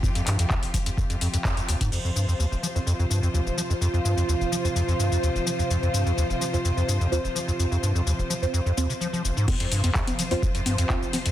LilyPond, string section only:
\new Staff \with { instrumentName = "String section" } { \time 4/4 \key c \phrygian \tempo 4 = 127 <c f f' g'>1 | <c f f' c''>1~ | <c f f' c''>1~ | <c f f' c''>1~ |
<c f f' c''>1 | <c f f' c''>1 | }